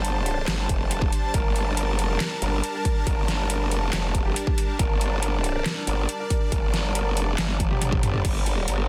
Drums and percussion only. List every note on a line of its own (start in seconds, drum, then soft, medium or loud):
0.05 closed hi-hat medium
0.26 closed hi-hat soft
0.48 snare loud
0.48 clap medium
0.48 closed hi-hat medium
0.69 kick medium
0.69 closed hi-hat medium
0.91 closed hi-hat medium
1.02 kick loud
1.13 closed hi-hat medium
1.34 kick loud
1.34 closed hi-hat medium
1.56 closed hi-hat soft
1.77 closed hi-hat medium
1.99 closed hi-hat medium
2.20 snare loud
2.20 clap medium
2.20 closed hi-hat medium
2.42 closed hi-hat medium
2.64 closed hi-hat medium
2.85 kick medium
2.85 closed hi-hat medium
3.07 kick loud
3.07 closed hi-hat medium
3.28 snare medium
3.28 closed hi-hat medium
3.50 closed hi-hat medium
3.71 closed hi-hat medium
3.93 snare loud
3.93 clap medium
3.93 closed hi-hat medium
4.15 kick medium
4.15 closed hi-hat medium
4.36 closed hi-hat medium
4.47 kick loud
4.58 closed hi-hat medium
4.79 kick loud
4.79 closed hi-hat medium
5.01 closed hi-hat medium
5.23 closed hi-hat medium
5.44 closed hi-hat medium
5.66 snare loud
5.66 clap medium
5.66 closed hi-hat medium
5.87 closed hi-hat medium
6.09 closed hi-hat medium
6.30 kick medium
6.30 closed hi-hat medium
6.52 kick loud
6.52 closed hi-hat medium
6.74 snare medium
6.74 closed hi-hat medium
6.95 closed hi-hat medium
7.17 closed hi-hat medium
7.38 snare loud
7.38 clap medium
7.38 closed hi-hat medium
7.38 high tom medium
7.49 high tom medium
7.60 kick medium
7.60 closed hi-hat medium
7.60 high tom medium
7.71 mid tom medium
7.82 closed hi-hat medium
7.82 mid tom medium
7.92 kick loud
7.92 mid tom medium
8.03 closed hi-hat medium
8.03 mid tom loud
8.14 mid tom medium
8.25 kick loud
8.25 closed hi-hat medium
8.25 crash loud
8.46 closed hi-hat medium
8.68 closed hi-hat medium